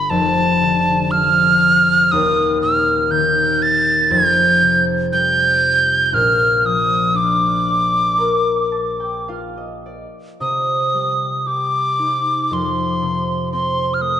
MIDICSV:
0, 0, Header, 1, 3, 480
1, 0, Start_track
1, 0, Tempo, 1003344
1, 1009, Time_signature, 4, 2, 24, 8
1, 2448, Tempo, 1016949
1, 3888, Tempo, 1117318
1, 4848, Tempo, 1071429
1, 5328, Tempo, 1048951
1, 5808, Tempo, 993377
1, 6617, End_track
2, 0, Start_track
2, 0, Title_t, "Tin whistle"
2, 0, Program_c, 0, 75
2, 0, Note_on_c, 0, 83, 93
2, 47, Note_on_c, 0, 81, 96
2, 55, Note_off_c, 0, 83, 0
2, 532, Note_on_c, 0, 89, 110
2, 539, Note_off_c, 0, 81, 0
2, 1012, Note_on_c, 0, 87, 103
2, 1019, Note_off_c, 0, 89, 0
2, 1248, Note_off_c, 0, 87, 0
2, 1251, Note_on_c, 0, 89, 96
2, 1488, Note_on_c, 0, 91, 96
2, 1495, Note_off_c, 0, 89, 0
2, 1733, Note_on_c, 0, 93, 102
2, 1740, Note_off_c, 0, 91, 0
2, 1968, Note_on_c, 0, 91, 119
2, 1975, Note_off_c, 0, 93, 0
2, 2322, Note_off_c, 0, 91, 0
2, 2453, Note_on_c, 0, 91, 115
2, 2893, Note_off_c, 0, 91, 0
2, 2893, Note_on_c, 0, 91, 76
2, 2931, Note_on_c, 0, 89, 97
2, 2938, Note_off_c, 0, 91, 0
2, 3176, Note_on_c, 0, 87, 87
2, 3183, Note_off_c, 0, 89, 0
2, 3413, Note_on_c, 0, 86, 88
2, 3420, Note_off_c, 0, 87, 0
2, 4368, Note_off_c, 0, 86, 0
2, 4851, Note_on_c, 0, 87, 66
2, 5325, Note_on_c, 0, 86, 68
2, 5332, Note_off_c, 0, 87, 0
2, 5813, Note_on_c, 0, 84, 77
2, 5820, Note_off_c, 0, 86, 0
2, 6289, Note_off_c, 0, 84, 0
2, 6292, Note_on_c, 0, 84, 76
2, 6492, Note_on_c, 0, 89, 52
2, 6499, Note_off_c, 0, 84, 0
2, 6529, Note_on_c, 0, 87, 83
2, 6537, Note_off_c, 0, 89, 0
2, 6617, Note_off_c, 0, 87, 0
2, 6617, End_track
3, 0, Start_track
3, 0, Title_t, "Harp"
3, 0, Program_c, 1, 46
3, 0, Note_on_c, 1, 31, 66
3, 0, Note_on_c, 1, 43, 75
3, 0, Note_on_c, 1, 50, 52
3, 0, Note_on_c, 1, 57, 59
3, 0, Note_on_c, 1, 59, 52
3, 48, Note_on_c, 1, 29, 66
3, 49, Note_on_c, 1, 41, 72
3, 73, Note_off_c, 1, 31, 0
3, 73, Note_off_c, 1, 43, 0
3, 73, Note_off_c, 1, 50, 0
3, 170, Note_off_c, 1, 57, 0
3, 292, Note_on_c, 1, 50, 53
3, 536, Note_on_c, 1, 53, 55
3, 1013, Note_on_c, 1, 27, 72
3, 1016, Note_on_c, 1, 39, 77
3, 1033, Note_off_c, 1, 29, 0
3, 1033, Note_off_c, 1, 41, 0
3, 1033, Note_off_c, 1, 50, 0
3, 1033, Note_off_c, 1, 53, 0
3, 1060, Note_off_c, 1, 59, 0
3, 1255, Note_on_c, 1, 46, 56
3, 1485, Note_on_c, 1, 51, 56
3, 1515, Note_off_c, 1, 46, 0
3, 1963, Note_on_c, 1, 41, 76
3, 1967, Note_on_c, 1, 29, 67
3, 1993, Note_off_c, 1, 27, 0
3, 1993, Note_off_c, 1, 39, 0
3, 1993, Note_off_c, 1, 51, 0
3, 2209, Note_on_c, 1, 48, 54
3, 2449, Note_on_c, 1, 55, 58
3, 2923, Note_on_c, 1, 34, 68
3, 2927, Note_on_c, 1, 46, 70
3, 2950, Note_off_c, 1, 29, 0
3, 2950, Note_off_c, 1, 41, 0
3, 2950, Note_off_c, 1, 48, 0
3, 2950, Note_off_c, 1, 55, 0
3, 3168, Note_on_c, 1, 53, 55
3, 3401, Note_on_c, 1, 62, 51
3, 3892, Note_on_c, 1, 70, 56
3, 4124, Note_on_c, 1, 81, 63
3, 4244, Note_on_c, 1, 79, 53
3, 4367, Note_on_c, 1, 77, 68
3, 4371, Note_on_c, 1, 65, 53
3, 4492, Note_on_c, 1, 75, 58
3, 4518, Note_off_c, 1, 62, 0
3, 4614, Note_on_c, 1, 74, 52
3, 4640, Note_off_c, 1, 75, 0
3, 4685, Note_off_c, 1, 34, 0
3, 4689, Note_off_c, 1, 46, 0
3, 4747, Note_off_c, 1, 81, 0
3, 4832, Note_off_c, 1, 70, 0
3, 4848, Note_on_c, 1, 48, 56
3, 4869, Note_off_c, 1, 53, 0
3, 4914, Note_off_c, 1, 79, 0
3, 5089, Note_on_c, 1, 55, 38
3, 5092, Note_off_c, 1, 77, 0
3, 5324, Note_on_c, 1, 67, 42
3, 5434, Note_off_c, 1, 74, 0
3, 5484, Note_off_c, 1, 65, 0
3, 5565, Note_on_c, 1, 63, 46
3, 5802, Note_on_c, 1, 41, 56
3, 5831, Note_off_c, 1, 48, 0
3, 5831, Note_off_c, 1, 55, 0
3, 6048, Note_on_c, 1, 48, 49
3, 6292, Note_on_c, 1, 60, 52
3, 6434, Note_off_c, 1, 67, 0
3, 6522, Note_on_c, 1, 57, 45
3, 6617, Note_off_c, 1, 41, 0
3, 6617, Note_off_c, 1, 48, 0
3, 6617, Note_off_c, 1, 57, 0
3, 6617, Note_off_c, 1, 60, 0
3, 6617, Note_off_c, 1, 63, 0
3, 6617, End_track
0, 0, End_of_file